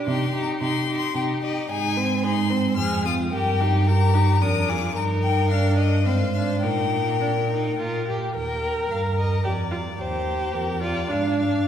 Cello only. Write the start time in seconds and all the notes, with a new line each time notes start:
0.07 C3
0.60 C3
1.15 C3
1.69 G#2
2.77 F2
3.32 G2
4.42 F2
4.96 G2
6.05 G#2
6.63 A#2
7.78 A#2
8.36 D#2
8.90 G2
9.46 F2
10.00 D#2
10.55 F2
11.11 G#2